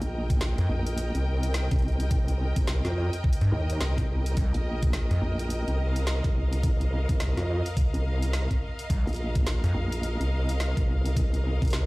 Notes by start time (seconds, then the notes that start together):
Already playing: A#4 D#5 G5
0.01 A#1, closed hi-hat
0.30 kick, closed hi-hat
0.41 snare, closed hi-hat
0.58 F2, closed hi-hat
0.69 A#1
0.87 closed hi-hat
0.98 closed hi-hat
1.15 C2, closed hi-hat
1.43 closed hi-hat
1.54 snare, closed hi-hat
1.71 C2, kick, closed hi-hat
1.73 closed hi-hat
1.79 closed hi-hat
1.82 closed hi-hat
1.88 closed hi-hat
1.92 closed hi-hat
2.00 closed hi-hat
2.11 kick, closed hi-hat
2.28 closed hi-hat
2.56 C2, kick, closed hi-hat
2.67 snare, closed hi-hat
2.85 F2, snare, closed hi-hat
3.13 closed hi-hat
3.24 kick
3.33 closed hi-hat
3.41 G2, closed hi-hat
3.52 D#2
3.70 closed hi-hat
3.80 C2, snare, closed hi-hat
3.98 kick, closed hi-hat
4.26 closed hi-hat
4.37 C2, kick, closed hi-hat
4.54 A#1, closed hi-hat
4.83 kick, closed hi-hat
4.93 snare, closed hi-hat
5.11 F2, closed hi-hat
5.22 A#1
5.39 closed hi-hat
5.50 closed hi-hat
5.67 C2, closed hi-hat
5.85 F5
5.96 closed hi-hat
6.07 snare, closed hi-hat
6.24 C2, kick, closed hi-hat
6.53 closed hi-hat
6.63 kick, closed hi-hat
6.81 closed hi-hat
7.09 C2, kick, closed hi-hat
7.20 snare, closed hi-hat
7.37 F2, snare, closed hi-hat
7.66 closed hi-hat
7.77 kick, closed hi-hat
7.94 C2, closed hi-hat
8.22 closed hi-hat
8.33 snare, closed hi-hat
8.51 kick, closed hi-hat
8.79 closed hi-hat
8.90 C2, kick, closed hi-hat
9.07 A#1, closed hi-hat
9.09 closed hi-hat
9.13 closed hi-hat
9.14 closed hi-hat
9.16 closed hi-hat
9.35 kick, closed hi-hat
9.47 snare, closed hi-hat
9.64 F2, closed hi-hat
9.75 A#1
9.92 closed hi-hat
10.03 closed hi-hat
10.20 C2, closed hi-hat
10.49 closed hi-hat
10.60 snare, closed hi-hat
10.77 C2, kick, closed hi-hat
11.06 closed hi-hat
11.16 kick, closed hi-hat
11.34 closed hi-hat
11.62 C2, kick, closed hi-hat
11.65 closed hi-hat
11.68 closed hi-hat
11.70 snare, closed hi-hat
11.73 closed hi-hat